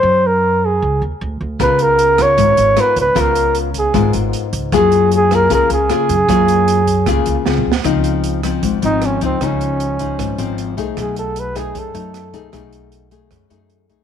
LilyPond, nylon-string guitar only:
\new Staff \with { instrumentName = "Nylon-string guitar" } { \time 4/4 \key des \major \tempo 4 = 154 << { r1 | <ces' f' bes'>4. <ces' f' bes'>4. <ces' f' bes'>8 r8 | <ces' f' bes'>4. r8 <ces' f' bes'>4. r8 | <bes f' aes'>4. <bes f' aes'>8 <bes f' aes'>8 r8 <bes f' aes'>8 r8 |
<bes f' aes'>4. r8 <bes f' aes'>4 <c' f' aes'>8 r8 | <f c' ees'>4. <f c' ees'>4 <f c' ees'>4 <f c' ees'>8 | <f ees'>4. <f ees'>4 <f c' ees'>4 <a ees' aes'>8~ | <a ees' aes'>4. <a ees' aes'>4 <a ees'>4 <a ees' aes'>8 |
<a ees' aes'>4. <a ees' aes'>4 <a ees' aes'>4 <a ees' aes'>8 | } \\ { r1 | des2 aes,2 | des2 aes,2 | ges2 des2 |
ges2 des4 r4 | des2 aes,2 | des2 aes,2 | ces2 ges,2 |
ces2 ges,2 | } >> }